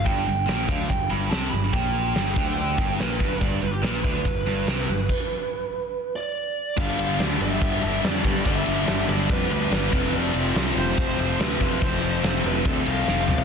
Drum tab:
CC |----------------|----------------|----------------|x---------------|
RD |----------------|----------------|----------------|----------------|
HH |o---o---o---o---|o---o---o---o---|o---o---o---o---|----------------|
SD |----o-------o---|----o-------o---|----o-------o---|----------------|
T2 |----------------|----------------|----------------|----------------|
FT |----------------|----------------|----------------|----------------|
BD |o-----o-o-------|o-----o---o---o-|o-----o-o-------|o---------------|

CC |x---------------|----------------|----------------|----------------|
RD |--x-x-x-x-x-x-x-|x-x-x-x-x-x-x-x-|x-x-x-x-x-x-x-x-|x-x-x-x-x-x-----|
HH |----------------|----------------|----------------|----------------|
SD |----o-------o---|----o-o-----o---|----o-o-----o---|----o-------o---|
T2 |----------------|----------------|----------------|--------------o-|
FT |----------------|----------------|----------------|---------------o|
BD |o-------o-----o-|o-------o-----o-|--------o-----o-|o-------o-------|